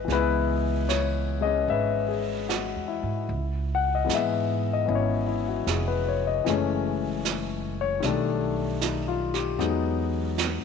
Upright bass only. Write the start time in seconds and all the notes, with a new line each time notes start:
0.08 C#2
1.68 G#1
2.76 E2
3.03 G#2
3.29 C#2
4.09 G#2
4.88 G#1
5.67 F1
6.47 F#1
8.02 B1
9.59 E2